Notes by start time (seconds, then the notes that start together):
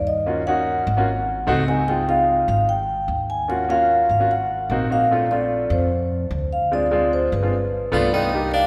Already playing: D#2
0.07 D#5
0.26 A#3 C#4 F4 F#4
0.47 A#3 C#4 D#4 F#4 F#5
0.87 G#1
0.97 A#3 C#4 F4 F#4
1.47 C#2 A3 C4 D#4 F#4
1.68 A3 C4 D#4 F#4 G#5
1.88 G#3 C4 D#4 F4 G5
2.08 G#3 C4 D#4 F4 F5
2.48 G#1 F5
2.69 G5
3.08 D#2
3.30 G#5
3.48 A#3 C#4 F4 F#4 F#5
3.69 A#3 C#4 F4 F#4 F5
4.09 G#1 F5
4.19 A#3 C#4 F4 F#4
4.31 F#5
4.70 A#1 A#3 C4 D#4 F#4
4.90 A#3 C4 D#4 F#4 F5
5.11 A3 C4 D4 F4
5.31 A3 C4 D4 F4 D5
5.70 F2 C5
6.31 D2
6.53 F5
6.71 G#3 C4 D4 F4 D5
6.91 G#3 C4 D4 F4
7.13 C5
7.32 G1 B4
7.42 G#3 C4 D4 F4
7.92 C2 A3 B3 D4 F4 D5
8.12 A3 B3 D4 D#4 F4 G5
8.33 A#3 D4 D#4 G4
8.54 D4 F5